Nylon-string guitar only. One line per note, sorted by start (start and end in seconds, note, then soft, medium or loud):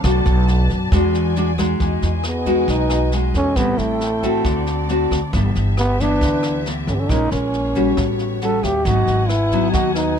0.04 0.90 B2 medium
0.04 0.63 A3 medium
0.04 0.64 D4 medium
0.04 0.64 F#4 medium
0.93 1.79 E3 medium
0.93 1.33 G#3 medium
0.93 1.34 D4 medium
0.93 1.34 F#4 medium
1.37 1.50 G#3 medium
1.37 1.50 D4 medium
1.37 1.50 F#4 medium
1.58 2.21 G#3 medium
1.58 2.21 D#4 medium
1.58 2.21 F#4 medium
1.81 2.67 E3 soft
2.46 3.09 G#3 medium
2.46 3.09 D#4 medium
2.46 3.09 F#4 medium
2.69 3.55 B2 medium
3.14 3.54 G#3 medium
3.14 3.54 D#4 soft
3.14 3.54 F#4 medium
3.57 4.43 A2 medium
3.57 4.01 G3 medium
3.57 4.01 C4 soft
3.57 4.01 E4 medium
4.23 4.86 A3 medium
4.23 4.86 C4 medium
4.23 4.86 F#4 medium
4.45 5.31 D3 medium
4.90 5.18 A3 medium
4.90 5.18 C4 medium
4.90 5.18 F#4 medium
5.34 6.20 G2 medium
5.34 5.77 E3 soft
5.34 5.78 B3 medium
5.34 5.78 D4 medium
6.01 6.63 E3 medium
6.01 6.63 B3 medium
6.01 6.63 D4 medium
6.23 7.08 D3 medium
6.66 7.07 E3 medium
6.66 7.07 B3 medium
6.66 7.07 D4 medium
7.10 7.96 A#2 soft
7.10 7.72 G#3 medium
7.10 7.72 C#4 soft
7.10 7.73 E4 medium
7.75 8.38 G3 medium
7.75 8.38 C#4 medium
7.75 8.38 F#4 medium
7.97 8.84 A2 soft
8.42 8.82 G3 soft
8.42 8.83 C#4 soft
8.42 8.83 F#4 medium
8.86 9.72 G#2 medium
8.86 9.30 F#3 medium
8.86 9.30 B3 soft
8.86 9.30 D#4 medium
9.53 10.15 F#3 medium
9.53 10.15 B3 medium
9.53 10.15 D#4 medium
9.75 10.19 D#3 medium